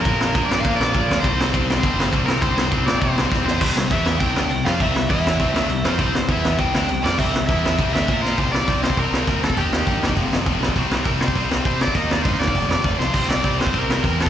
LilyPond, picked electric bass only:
\new Staff \with { instrumentName = "Picked electric bass" } { \clef bass \time 4/4 \key c \mixolydian \tempo 4 = 202 bes,,4 bes,,8 g,8 bes,8 bes,,8 bes,,8 d,8 | c,4 c,4 g,,4 c,8 c,8 | c,4 c,8 bes,8 c8 c,8 c,8 e,8 | c,8 c,8 e,4 c,8 d,8 c,8 f,8 |
c,8 c,8 e,4 c,8 d,8 c,8 f,8 | c,8 c,8 e,4 c,8 d,8 c,8 f,8 | c,8 c,8 e,4 c,8 d,8 bes,4 | c,8 c,8 c,4 c,8 c,8 d,4 |
ees,8 ees,8 g,8 ees,8 f,,8 f,,8 f,,8 b,,8 | c,8 c,8 c,4 c,8 c,8 c4 | ees,8 ees,8 g,8 ees,8 f,,8 f,,8 f,,8 c,8 | c,8 c,8 c,4 c,8 c,8 e,4 | }